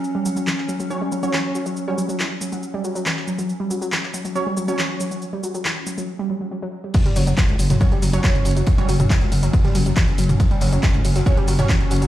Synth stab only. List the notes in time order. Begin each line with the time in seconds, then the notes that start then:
0.90 F#3 C#4 C#5
1.23 F#3 C#4 C#5
1.88 F#3 C#4 C#5
4.35 F#3 C#4 C#5
4.68 F#3 C#4 C#5
7.81 F#3 C#4 C#5
8.13 F#3 C#4 C#5
8.78 F#3 C#4 C#5
11.26 F#3 C#4 C#5
11.59 F#3 C#4 C#5